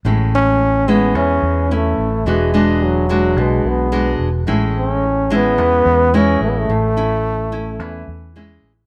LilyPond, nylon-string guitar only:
\new Staff \with { instrumentName = "Nylon-string guitar" } { \time 4/4 \key a \major \tempo 4 = 108 << { <gis cis' e'>4 r8 <gis cis' e'>4. <cis' e'>8 r8 | <gis d' fis'>8 <gis d' fis'>4 <gis d' fis'>4. <gis d' fis'>8 r8 | <gis cis' e'>4 r8 <gis cis' e'>4. <gis cis' e'>4 | r8 <cis' e'>4 <cis' e'>4. <gis cis' e'>8 r8 | } \\ { a,2 e2 | e2 b,2 | a,2 e2 | a,2 e2 | } >> }